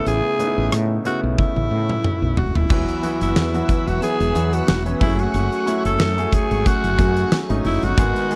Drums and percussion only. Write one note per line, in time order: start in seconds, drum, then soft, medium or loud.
0.06 closed hi-hat medium
0.40 closed hi-hat medium
0.72 cross-stick loud
0.72 closed hi-hat medium
1.05 closed hi-hat medium
1.38 kick medium
1.38 high tom soft
1.56 high tom soft
1.90 mid tom medium
2.04 mid tom medium
2.37 floor tom medium
2.55 floor tom medium
2.70 kick loud
2.70 crash medium
2.88 closed hi-hat soft
3.03 closed hi-hat medium
3.21 closed hi-hat medium
3.36 snare loud
3.54 closed hi-hat soft
3.69 kick medium
3.69 closed hi-hat medium
3.88 closed hi-hat soft
4.02 closed hi-hat medium
4.20 closed hi-hat medium
4.35 closed hi-hat medium
4.53 closed hi-hat medium
4.68 snare loud
4.86 closed hi-hat soft
5.01 kick loud
5.01 open hi-hat medium
5.19 closed hi-hat soft
5.34 closed hi-hat medium
5.52 closed hi-hat soft
5.67 closed hi-hat medium
5.85 closed hi-hat medium
6.00 snare loud
6.18 closed hi-hat soft
6.33 kick medium
6.33 closed hi-hat medium
6.51 closed hi-hat soft
6.66 kick medium
6.66 closed hi-hat medium
6.84 closed hi-hat medium
6.99 kick medium
6.99 closed hi-hat medium
7.17 closed hi-hat medium
7.32 snare loud
7.50 closed hi-hat medium
7.65 open hi-hat medium
7.83 closed hi-hat soft
7.98 kick loud
7.98 closed hi-hat medium
8.16 closed hi-hat soft
8.31 closed hi-hat medium